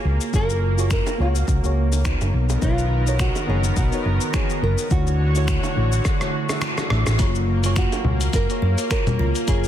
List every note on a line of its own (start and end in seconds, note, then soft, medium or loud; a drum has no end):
0.00 0.30 A#3 medium
0.00 2.30 A#3 medium
0.00 0.30 F4 medium
0.00 0.31 F#4 medium
0.00 0.31 G#4 medium
0.00 0.35 G#4 medium
0.00 0.32 C#5 medium
0.05 0.17 C#2 loud
0.21 shaker medium
0.32 1.00 F#1 medium
0.32 0.74 A#3 medium
0.32 0.74 F4 medium
0.32 0.75 F#4 medium
0.32 0.75 G#4 medium
0.32 0.91 A#4 loud
0.32 0.75 C#5 medium
0.32 kick medium
0.32 shaker soft
0.50 shaker soft
0.77 1.16 A#3 medium
0.77 1.16 F4 medium
0.77 1.16 F#4 medium
0.77 1.17 G#4 medium
0.77 1.17 C#5 medium
0.77 shaker medium
0.91 1.21 A#4 loud
0.91 finger snap medium
0.91 kick loud
0.91 shaker medium
1.07 high bongo medium
1.07 shaker soft
1.18 1.41 C#2 medium
1.18 1.34 A#3 medium
1.18 1.34 F4 medium
1.18 1.34 F#4 medium
1.18 2.31 F#4 medium
1.18 1.35 G#4 medium
1.18 1.35 C#5 loud
1.36 shaker medium
1.48 1.60 C#2 medium
1.48 kick loud
1.48 shaker medium
1.63 2.14 C#2 medium
1.63 2.02 A#3 medium
1.63 2.02 F#4 medium
1.63 2.03 G#4 medium
1.63 2.03 C#5 medium
1.63 2.02 F5 medium
1.63 shaker soft
1.92 high bongo soft
1.92 shaker medium
2.04 2.59 B3 medium
2.04 2.59 D#4 medium
2.04 2.59 F#4 medium
2.04 2.60 A#4 medium
2.04 2.60 C#5 medium
2.04 finger snap medium
2.04 kick medium
2.04 shaker soft
2.21 2.30 F#1 medium
2.21 high bongo soft
2.21 shaker soft
2.34 2.55 B1 medium
2.34 4.88 D#3 medium
2.34 4.88 B3 medium
2.34 4.88 A#4 medium
2.50 high bongo medium
2.50 shaker medium
2.61 3.29 B1 loud
2.61 3.03 F#3 medium
2.61 3.03 B3 medium
2.61 3.03 D#4 medium
2.61 3.16 F4 medium
2.61 3.03 A#4 medium
2.61 3.04 C#5 medium
2.61 kick loud
2.61 shaker soft
2.78 shaker soft
3.06 3.44 B3 medium
3.06 3.45 D#4 medium
3.06 3.45 F#4 medium
3.06 3.45 A#4 medium
3.06 3.46 C#5 medium
3.06 shaker medium
3.19 3.49 F#4 medium
3.19 finger snap medium
3.19 kick medium
3.19 shaker medium
3.36 high bongo medium
3.36 shaker soft
3.47 3.70 F#1 medium
3.47 3.62 B3 medium
3.47 3.63 D#4 medium
3.47 3.63 F#4 medium
3.47 3.57 G#4 medium
3.47 3.63 A#4 medium
3.47 3.64 C#5 loud
3.64 shaker medium
3.77 3.88 B1 loud
3.77 4.35 F#4 medium
3.77 kick loud
3.77 shaker soft
3.92 4.30 B3 medium
3.92 4.30 D#4 medium
3.92 4.31 F#4 medium
3.92 4.31 A#4 medium
3.92 4.31 C#5 medium
3.92 shaker soft
4.05 4.17 F#1 medium
4.05 high bongo soft
4.21 shaker medium
4.33 4.87 B3 medium
4.33 4.88 D#4 medium
4.33 4.88 F#4 medium
4.33 4.61 G#4 medium
4.33 4.88 A#4 medium
4.33 4.89 C#5 medium
4.33 finger snap medium
4.33 kick medium
4.33 shaker soft
4.50 shaker soft
4.62 4.74 F#1 loud
4.62 4.91 A#4 loud
4.78 shaker medium
4.90 5.57 D2 medium
4.90 7.17 D3 medium
4.90 5.31 A3 medium
4.90 5.31 D4 medium
4.90 5.32 E4 medium
4.90 7.17 F#4 medium
4.90 5.32 F#4 medium
4.90 6.59 F#4 medium
4.90 7.17 C#5 medium
4.90 5.32 C#5 medium
4.90 kick loud
4.90 shaker medium
5.07 shaker soft
5.35 5.73 A3 medium
5.35 5.73 D4 medium
5.35 5.74 E4 medium
5.35 5.74 F#4 medium
5.35 5.75 C#5 medium
5.35 shaker medium
5.48 finger snap loud
5.48 kick loud
5.48 shaker medium
5.63 high bongo medium
5.63 shaker soft
5.75 5.98 A1 medium
5.75 5.91 A3 medium
5.75 5.91 D4 medium
5.75 5.92 E4 medium
5.75 5.92 F#4 medium
5.75 5.92 C#5 loud
5.92 shaker medium
6.05 kick loud
6.05 cross-stick medium
6.05 shaker medium
6.20 6.46 A3 medium
6.20 6.46 D4 medium
6.20 6.47 E4 medium
6.20 6.47 F#4 medium
6.20 6.47 C#5 medium
6.20 cross-stick medium
6.20 shaker soft
6.49 6.87 A3 medium
6.49 6.88 D4 medium
6.49 6.88 E4 medium
6.49 6.89 F#4 medium
6.49 6.89 E5 medium
6.49 cross-stick medium
6.49 high bongo medium
6.49 shaker medium
6.62 finger snap medium
6.62 cross-stick medium
6.62 shaker soft
6.78 cross-stick medium
6.78 high bongo soft
6.78 shaker soft
6.90 7.03 A1 loud
6.90 7.16 A3 medium
6.90 7.16 D4 medium
6.90 7.17 E4 medium
6.90 7.17 F#4 medium
6.90 7.17 E5 medium
6.90 cross-stick loud
7.07 7.16 A1 medium
7.07 cross-stick medium
7.07 high bongo medium
7.07 shaker medium
7.18 7.60 F#3 medium
7.18 7.60 A#3 medium
7.18 9.68 A#3 medium
7.18 7.47 F4 loud
7.18 7.60 F4 medium
7.18 7.61 G#4 medium
7.18 7.61 C#5 medium
7.18 kick loud
7.18 closed hi-hat medium
7.18 shaker soft
7.35 shaker soft
7.63 8.02 F#3 medium
7.63 8.02 A#3 medium
7.63 8.02 F4 medium
7.63 8.03 G#4 medium
7.63 8.03 C#5 loud
7.63 closed hi-hat soft
7.63 shaker medium
7.76 8.02 F#4 medium
7.76 8.31 F#4 medium
7.76 finger snap loud
7.76 kick loud
7.76 closed hi-hat medium
7.76 shaker medium
7.92 closed hi-hat soft
7.92 high bongo medium
7.92 shaker soft
8.04 8.27 C#2 loud
8.04 8.19 A#3 medium
8.04 8.20 F4 medium
8.04 8.20 F#4 medium
8.04 8.21 G#4 medium
8.04 8.21 C#5 loud
8.04 low conga medium
8.21 closed hi-hat soft
8.21 shaker medium
8.33 8.45 F#1 loud
8.33 8.51 A#4 medium
8.33 8.90 A#4 loud
8.33 kick loud
8.33 closed hi-hat medium
8.33 shaker medium
8.48 8.87 A#3 medium
8.48 8.88 F#4 medium
8.48 8.88 G#4 medium
8.48 8.88 C#5 medium
8.48 8.87 F5 medium
8.48 closed hi-hat soft
8.48 shaker soft
8.62 8.74 F#2 loud
8.62 8.79 C#5 medium
8.62 high bongo soft
8.78 closed hi-hat soft
8.78 shaker medium
8.89 9.44 A#3 medium
8.89 9.45 F4 medium
8.89 9.45 F#4 medium
8.89 9.45 G#4 medium
8.89 9.48 A#4 loud
8.89 9.46 C#5 medium
8.89 finger snap loud
8.89 kick loud
8.89 closed hi-hat medium
8.89 shaker medium
9.07 closed hi-hat soft
9.07 low conga medium
9.07 shaker soft
9.19 9.31 C#2 loud
9.19 9.47 F4 loud
9.35 closed hi-hat soft
9.35 shaker medium
9.46 9.68 F#1 loud
9.46 9.68 F#3 medium
9.46 9.68 A#3 medium
9.46 9.68 F4 medium
9.46 9.68 F4 loud
9.46 9.68 G#4 medium
9.46 9.68 G#4 loud
9.46 9.68 C#5 medium
9.46 kick loud
9.46 closed hi-hat medium
9.46 shaker medium
9.64 shaker soft